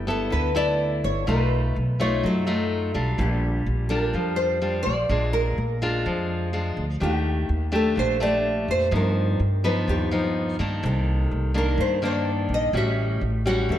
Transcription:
0.00 0.29 G1 medium
0.00 0.29 G3 soft
0.07 0.52 B3 medium
0.07 0.52 E4 medium
0.07 0.52 A4 medium
0.07 0.31 A4 medium
0.30 1.00 D2 medium
0.30 1.24 D3 medium
0.30 0.56 B4 medium
0.55 1.23 B3 medium
0.55 1.24 E4 medium
0.55 1.24 A4 medium
0.55 1.01 D5 loud
1.04 1.26 G1 medium
1.04 1.26 C#5 medium
1.27 1.72 B1 loud
1.27 2.21 B2 medium
1.27 1.75 A3 medium
1.27 1.75 D#4 soft
1.27 1.75 F4 medium
1.27 1.73 B4 medium
1.76 2.20 B1 medium
2.00 2.44 A3 medium
2.00 2.44 D#4 medium
2.00 2.44 F4 medium
2.00 2.25 C#5 loud
2.23 2.91 F#2 medium
2.23 3.17 F#3 medium
2.23 2.92 A4 medium
2.47 2.91 A3 medium
2.47 2.91 D#4 medium
2.47 2.91 F4 medium
2.94 3.17 B1 medium
2.94 3.86 G3 medium
2.94 3.87 D4 medium
2.94 3.87 F4 medium
3.18 3.63 A#1 loud
3.18 4.12 A#2 medium
3.18 3.94 G4 medium
3.66 4.11 A#1 medium
3.89 4.58 G3 medium
3.89 4.58 D4 medium
3.89 4.59 F4 medium
3.89 4.36 A#4 medium
4.13 4.82 F2 medium
4.13 5.08 F3 medium
4.36 4.82 C5 medium
4.62 4.93 G3 medium
4.62 4.93 D4 medium
4.62 4.93 F4 medium
4.83 5.08 A#1 medium
4.83 5.33 D5 loud
5.09 5.54 A#1 loud
5.09 6.03 A#2 medium
5.09 5.58 G#3 medium
5.09 5.58 D4 medium
5.09 5.58 F4 medium
5.33 5.78 A#4 medium
5.58 6.02 A#1 medium
5.82 6.50 G#3 medium
5.82 6.50 D4 medium
5.82 6.50 F4 medium
6.06 6.73 F2 medium
6.06 6.99 F3 medium
6.53 6.84 G#3 soft
6.53 6.84 D4 soft
6.53 6.84 F4 medium
6.77 6.99 D2 medium
7.00 7.46 D#2 loud
7.00 7.94 D#3 soft
7.00 7.48 A3 medium
7.00 7.49 D4 medium
7.00 7.49 G4 medium
7.00 7.75 G4 medium
7.49 7.93 D#2 medium
7.72 8.16 A3 medium
7.72 8.16 D4 medium
7.72 8.17 G4 medium
7.72 7.96 A4 medium
7.96 8.65 A#1 medium
7.96 8.89 A#2 medium
7.96 8.22 C5 medium
8.20 8.88 A3 medium
8.20 8.88 D4 medium
8.20 8.89 G4 medium
8.20 8.70 D5 loud
8.68 8.91 F2 medium
8.68 8.94 C5 medium
8.91 9.85 G2 medium
8.91 9.36 G2 loud
8.91 9.39 F3 medium
8.91 9.39 B3 soft
8.91 9.40 D#4 medium
8.96 9.38 A#4 medium
9.40 9.84 G2 medium
9.64 10.08 F3 medium
9.64 10.08 B3 medium
9.64 10.08 D#4 medium
9.64 9.71 B4 medium
9.88 10.55 D#2 medium
9.88 10.81 G2 medium
9.88 10.56 G4 medium
10.11 10.55 F3 medium
10.11 10.56 B3 medium
10.11 10.56 D#4 medium
10.59 10.81 G2 medium
10.59 11.51 D#3 medium
10.59 11.51 A#3 medium
10.59 11.51 D4 medium
10.83 11.28 C2 loud
10.83 11.76 C3 soft
10.83 11.57 A4 medium
11.31 11.76 C2 medium
11.54 11.98 D#3 medium
11.54 11.99 A#3 medium
11.54 11.99 D4 medium
11.54 11.80 A#4 medium
11.78 12.46 G2 medium
11.78 12.71 G2 medium
11.78 12.04 C5 medium
12.02 12.70 D#3 medium
12.02 12.70 A#3 medium
12.02 12.71 D4 medium
12.02 12.48 D5 medium
12.49 12.72 A#1 medium
12.54 12.77 D#5 loud
12.73 13.18 A1 loud
12.73 13.67 A2 soft
12.73 13.21 G3 soft
12.73 13.22 C#4 medium
12.73 13.22 F#4 medium
12.73 13.20 E5 medium
13.21 13.66 A1 medium
13.46 13.79 G3 medium
13.46 13.79 C#4 medium
13.46 13.79 F#4 medium
13.46 13.71 F#5 loud
13.69 13.79 E2 medium
13.69 13.79 E3 soft
13.69 13.79 A4 medium

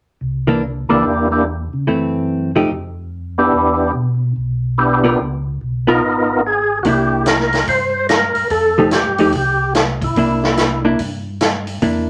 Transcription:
0.21 0.85 C2 medium
0.47 0.61 E3 medium
0.47 0.61 A#3 medium
0.47 0.61 D4 medium
0.88 1.02 C#2 medium
0.88 1.03 E3 medium
0.88 1.28 A#3 medium
0.88 1.03 A#3 medium
0.88 1.28 D4 soft
0.88 1.03 D4 medium
0.88 1.28 E4 soft
0.88 1.29 G4 medium
1.05 1.68 E2 medium
1.31 1.44 A#3 medium
1.31 1.45 D4 medium
1.31 1.45 E4 medium
1.31 1.45 G4 medium
1.73 1.87 C#3 medium
1.87 2.67 F#2 medium
1.87 2.50 E3 soft
1.87 2.50 A3 soft
1.87 2.51 C4 soft
2.56 2.69 F3 medium
2.56 2.69 A3 medium
2.56 2.69 D#4 medium
2.56 2.69 G4 medium
2.71 3.49 F2 medium
3.38 3.92 B3 medium
3.38 3.92 D4 medium
3.38 3.92 E4 medium
3.38 3.92 G4 medium
3.53 3.92 E2 medium
3.94 4.33 B2 medium
4.36 5.15 B1 medium
4.78 5.19 B3 medium
4.78 5.19 D4 soft
4.78 5.19 E4 soft
4.78 5.20 G4 medium
5.04 5.17 B3 medium
5.04 5.18 F4 medium
5.04 5.18 A#4 medium
5.20 5.58 C#2 medium
5.61 6.00 B1 medium
5.87 6.01 B3 medium
5.87 6.41 B3 medium
5.87 6.41 D#4 medium
5.87 6.01 F4 medium
5.87 6.41 F4 soft
5.87 6.01 A#4 medium
5.87 6.41 A#4 medium
6.02 6.81 G#1 medium
6.46 6.79 G#4 medium
6.83 7.64 C2 medium
6.83 7.48 A#3 soft
6.83 7.49 D4 soft
6.83 7.49 E4 soft
6.83 6.87 F#4 medium
6.83 kick soft
6.83 open hi-hat soft
6.88 7.25 G4 medium
7.26 7.66 A#4 medium
7.26 snare medium
7.26 closed hi-hat soft
7.40 snare soft
7.53 snare soft
7.53 open hi-hat soft
7.68 8.32 G2 medium
7.68 8.07 C5 loud
7.68 kick soft
7.68 open hi-hat soft
8.09 8.48 A#4 medium
8.09 snare medium
8.09 closed hi-hat soft
8.35 8.44 G2 soft
8.35 open hi-hat soft
8.50 9.02 F2 medium
8.50 8.90 A4 medium
8.50 kick soft
8.50 open hi-hat soft
8.78 8.91 F3 medium
8.78 8.91 A3 medium
8.78 8.92 D#4 medium
8.78 8.92 G4 medium
8.91 9.32 G4 medium
8.91 snare medium
8.91 closed hi-hat soft
9.07 9.19 G2 medium
9.18 9.34 E2 medium
9.18 9.33 F3 medium
9.18 9.32 A3 medium
9.18 9.33 D#4 medium
9.18 9.33 G4 medium
9.18 open hi-hat soft
9.32 10.13 C2 medium
9.32 9.74 G4 medium
9.32 kick soft
9.32 open hi-hat soft
9.75 snare medium
9.75 closed hi-hat soft
10.02 10.82 E4 medium
10.02 kick medium
10.02 open hi-hat soft
10.16 10.96 C2 medium
10.16 10.80 A#3 medium
10.16 10.80 D4 medium
10.16 10.81 E4 medium
10.16 kick soft
10.16 open hi-hat soft
10.44 snare soft
10.57 snare medium
10.57 closed hi-hat soft
10.85 10.98 A#3 medium
10.85 10.98 D4 medium
10.85 10.99 E4 medium
10.99 11.79 G2 medium
10.99 kick soft
10.99 open hi-hat soft
11.41 snare medium
11.41 closed hi-hat soft
11.67 open hi-hat soft
11.82 12.10 E2 medium
11.82 12.10 A#3 soft
11.82 12.10 D4 soft
11.82 12.10 E4 soft
11.82 kick soft
11.82 open hi-hat soft

